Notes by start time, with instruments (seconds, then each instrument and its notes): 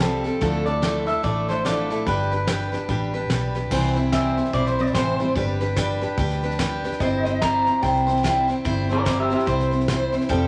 Already playing: fingered electric bass C2
0.00 steel-string acoustic guitar F3 G3 C4 G4 A4, snare, hi-hat pedal
0.24 steel-string acoustic guitar C4 G4 A4, snare
0.41 fingered electric bass D2, steel-string acoustic guitar D3 F3 A3 D4 E4 A4, kick, snare
0.66 steel-string acoustic guitar A3 D4 E4 A4, clean electric guitar D5, snare
0.82 steel-string acoustic guitar D3 F3 A3 D4 E4 A4, snare, hi-hat pedal
1.06 steel-string acoustic guitar A3 D4 E4 A4, clean electric guitar E5, snare
1.23 fingered electric bass A1, steel-string acoustic guitar A3 D4 E4 A4, clean electric guitar D5, kick, snare
1.48 steel-string acoustic guitar A3 D4 E4 A4, clean electric guitar C5, snare
1.65 steel-string acoustic guitar D3 F3 A3 D4 E4 A4, clean electric guitar D5, snare, hi-hat pedal
1.90 steel-string acoustic guitar A3 D4 E4 A4, snare
2.07 fingered electric bass G1, steel-string acoustic guitar G3 D4 G4 B4, clean electric guitar B4, kick, snare
2.31 steel-string acoustic guitar D4 G4 B4, snare
2.47 steel-string acoustic guitar G3 D4 G4 B4, snare, hi-hat pedal
2.72 steel-string acoustic guitar D4 G4 B4, snare
2.88 fingered electric bass A1, steel-string acoustic guitar G3 D4 G4 B4, kick, snare
3.14 steel-string acoustic guitar D4 G4 B4, snare
3.30 fingered electric bass B1, steel-string acoustic guitar G3 D4 G4 B4, snare, hi-hat pedal
3.54 steel-string acoustic guitar D4 G4 B4, snare
3.71 fingered electric bass C2, steel-string acoustic guitar C3 E3 G3 C4 E4 C5, kick, snare, crash
3.96 steel-string acoustic guitar G3 C4 E4 C5, snare
4.12 steel-string acoustic guitar C3 E3 G3 C4 E4 C5, clean electric guitar E5, kick, snare, hi-hat pedal
4.37 steel-string acoustic guitar G3 C4 E4 C5, snare
4.45 snare
4.53 fingered electric bass B1, steel-string acoustic guitar G3 C4 E4 C5, clean electric guitar D5, kick, snare
4.66 clean electric guitar C5, snare
4.78 steel-string acoustic guitar G3 C4 E4 C5, clean electric guitar D5, snare
4.87 snare
4.94 fingered electric bass A1, steel-string acoustic guitar C3 E3 G3 C4 E4 C5, clean electric guitar C5, kick, snare, hi-hat pedal
5.20 steel-string acoustic guitar G3 C4 E4 C5, snare
5.36 fingered electric bass G1, steel-string acoustic guitar G3 D4 G4 B4, kick, snare
5.60 steel-string acoustic guitar D4 G4 B4, snare
5.76 steel-string acoustic guitar G3 D4 G4 B4, kick, snare, hi-hat pedal
6.01 steel-string acoustic guitar D4 G4 B4, snare
6.17 fingered electric bass D2, steel-string acoustic guitar G3 D4 G4 B4, kick, snare
6.30 snare
6.42 steel-string acoustic guitar D4 G4 B4, snare
6.51 snare
6.59 steel-string acoustic guitar G3 D4 G4 B4, kick, snare, hi-hat pedal
6.84 steel-string acoustic guitar D4 G4 B4, snare
6.92 snare
7.00 fingered electric bass G1, steel-string acoustic guitar G3 C4 E4 C5, clean electric guitar D#5, kick, snare
7.25 steel-string acoustic guitar C4 E4 C5, clean electric guitar D#5, snare
7.42 steel-string acoustic guitar G3 C4 E4 C5, clean electric guitar A#5, kick, snare, hi-hat pedal
7.66 steel-string acoustic guitar C4 E4 C5, snare
7.82 fingered electric bass C2, steel-string acoustic guitar G3 C4 E4 C5, clean electric guitar G5, kick, snare
7.96 snare
8.07 steel-string acoustic guitar C4 E4 C5, snare
8.17 snare
8.23 steel-string acoustic guitar G3 C4 E4 C5, clean electric guitar G5, kick, snare, hi-hat pedal
8.48 steel-string acoustic guitar C4 E4 C5, snare
8.65 fingered electric bass G1, steel-string acoustic guitar G3 C4 E4 C5, kick, snare
8.89 steel-string acoustic guitar C4 E4 C5, clean electric guitar A#4 D5, snare
9.05 steel-string acoustic guitar G3 C4 E4 C5, clean electric guitar A#4 D5, kick, snare, hi-hat pedal
9.19 clean electric guitar G4 E5
9.30 steel-string acoustic guitar C4 E4 C5, clean electric guitar G4 E5, snare
9.39 snare
9.46 fingered electric bass C2, steel-string acoustic guitar G3 C4 E4 C5, clean electric guitar C5, kick, snare
9.60 snare
9.71 steel-string acoustic guitar C4 E4 C5, snare
9.80 snare
9.88 steel-string acoustic guitar G3 C4 E4 C5, kick, snare, hi-hat pedal
10.12 steel-string acoustic guitar C4 E4 C5, snare
10.21 snare
10.29 fingered electric bass F1, steel-string acoustic guitar F3 G3 C4 G4 A4, kick, snare